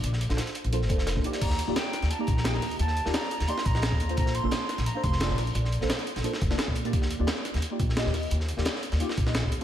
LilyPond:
<<
  \new Staff \with { instrumentName = "Flute" } { \time 4/4 \key ees \lydian \tempo 4 = 174 r1 | bes''4 g''4 a''16 bes''8. g''16 bes''8. | a''4 bes''4 c'''8 bes''4. | bes''8 c'''4. bes''8 c'''4 r8 |
r1 | r1 | r1 | }
  \new Staff \with { instrumentName = "Synth stab" } { \time 4/4 \key ees \lydian <bes d' f' a' d''>8. <bes d' f' a' c''>16 r4 <bes d' f' a' c''>16 r16 <bes d' f' a' c''>8. <bes d' f' a' c''>16 <bes ees' f' g' d''>8~ | <bes ees' f' g' d''>8. <bes ees' f' g' d''>16 r4 r16 <bes ees' f' g' d''>16 r8 <bes ees' f' g' ees''>4~ | <bes ees' f' g' ees''>8. <bes ees' f' g' d''>16 r4 <bes ees' f' g' d''>16 r8 <bes ees' f' g' ees''>16 r8. <bes d' f' a' c''>16~ | <bes d' f' a' c''>8. <bes d' f' a' c''>16 r4 r16 <bes d' f' a' c''>16 r8 <bes d' f' a' d''>4~ |
<bes d' f' a' d''>8. <bes d' f' a' c''>16 r4 <bes d' f' a' c''>16 r8 <bes d' f' a' d''>16 r8. <bes ees' f' g' d''>16~ | <bes ees' f' g' d''>8. <bes ees' f' g' d''>16 r4 r16 <bes ees' f' g' d''>16 r8 <bes ees' f' g' ees''>4~ | <bes ees' f' g' ees''>8. <bes ees' f' g' d''>16 r4 <bes ees' f' g' d''>16 r8 <bes ees' f' g' ees''>16 r8. <bes d'>16 | }
  \new Staff \with { instrumentName = "Upright bass" } { \clef bass \time 4/4 \key ees \lydian bes,,8. bes,,16 r8. bes,,8. f,,8. bes,,16 r8 | ees,8. ees,16 r8. ees,16 r8 bes,,8. ees,8. | ees,8. ees,16 r8. ees,16 r8 bes,,8. ees,8. | bes,,8. bes,,16 r8. bes,,16 r8 f,,8. bes,,8. |
bes,,8. bes,,16 r8. bes,,16 r8 f,,16 r8 bes,8. | ees,8. ees,16 r8. ees,16 r8 bes,,8. ees,8. | ees,8. ees,16 r8. ees,16 r8 bes,,8. ees,8. | }
  \new DrumStaff \with { instrumentName = "Drums" } \drummode { \time 4/4 hh16 sn16 hh16 <hh sn>16 <hh sn>16 <hh sn>16 hh16 hh16 hh16 sn16 <hh bd>16 sn16 <hh sn>16 bd16 hh16 <hh sn>16 | <cymc hh bd>16 sn16 hh8 <hh sn>8 <hh sn>16 <hh sn>16 hh8 <hh bd>16 sn16 <hh sn>16 sn16 <hh hho sn>16 hh16 | hh16 sn16 hh16 sn16 <hh sn>16 sn16 hh16 <hh sn>16 hh16 sn16 <hh bd>16 sn16 <hh sn>16 bd16 hh16 hh16 | <hh bd>16 sn16 hh8 <hh sn>8 <hh sn>16 <hh sn>16 hh8 <hh bd>16 sn16 <hh sn>16 sn16 <hh hho sn>16 hh16 |
hh16 sn16 hh16 sn16 <hh sn>16 <hh sn>16 hh16 <hh sn>16 hh16 sn16 <hh bd>16 sn16 <hh sn>16 bd16 hh16 hh16 | <hh bd>16 sn16 hh8 <hh sn>8 <hh sn>16 <hh sn>16 hh8 <hh bd>16 sn16 <hh sn>16 sn16 <hh hho sn>16 hh16 | hh16 sn16 hh16 sn16 <hh sn>16 sn16 hh16 <hh sn>16 hh16 sn16 <hh bd>16 sn16 <hh sn>16 bd16 hh8 | }
>>